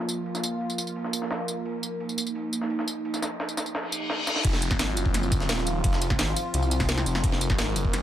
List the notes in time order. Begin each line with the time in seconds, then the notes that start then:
Already playing: F3 A#3 F4
0.08 ride, tambourine
0.26 ride
0.35 snare, tambourine
0.43 ride, tambourine
0.61 ride
0.70 ride, tambourine
0.78 ride, tambourine
0.87 tambourine
0.96 ride
1.04 snare
1.13 ride, tambourine
1.22 snare
1.31 snare, ride
1.48 ride, tambourine
1.65 D#4, ride
1.83 ride, tambourine
2.00 ride
2.09 tambourine
2.18 ride, tambourine
2.27 tambourine
2.35 ride
2.53 ride, tambourine
2.61 snare
2.70 ride
2.79 snare
2.88 ride, tambourine
3.05 ride
3.14 snare, tambourine
3.22 snare, ride, tambourine
3.40 snare, ride
3.49 ride, tambourine
3.57 snare, ride, tambourine
3.66 tambourine
3.75 snare, ride, reverse cymbal
3.83 snare
3.92 tambourine
4.10 snare, ride
4.27 snare, ride, tambourine
4.36 snare, ride
4.44 F1 F3 C4 F4, kick, closed hi-hat, ride, crash
4.53 snare
4.62 closed hi-hat, ride, tambourine
4.71 kick, snare
4.79 G#1, snare, closed hi-hat, ride
4.97 F#1, closed hi-hat, ride, tambourine
5.06 kick
5.14 snare, closed hi-hat, ride
5.23 tambourine
5.32 kick, closed hi-hat, ride, tambourine
5.40 snare
5.49 D#1, snare, closed hi-hat, ride, tambourine
5.58 snare
5.66 closed hi-hat, ride, tambourine
5.84 F1, kick, closed hi-hat, ride
5.93 snare
6.01 closed hi-hat, ride, tambourine
6.10 kick, snare
6.19 G#1, snare, closed hi-hat, ride
6.28 ride
6.36 closed hi-hat, ride, tambourine
6.54 C2, closed hi-hat, ride
6.63 tambourine
6.71 closed hi-hat, ride, tambourine
6.80 kick, snare, ride
6.89 snare, closed hi-hat, tambourine
6.98 snare, ride
7.06 F1, closed hi-hat, ride, tambourine
7.15 snare
7.24 F1 A#4, kick, closed hi-hat, ride
7.32 snare
7.41 closed hi-hat, ride, tambourine
7.50 kick, snare
7.58 G#1, snare, closed hi-hat, ride
7.76 F#1, closed hi-hat, ride, tambourine
7.85 kick
7.93 snare, closed hi-hat, ride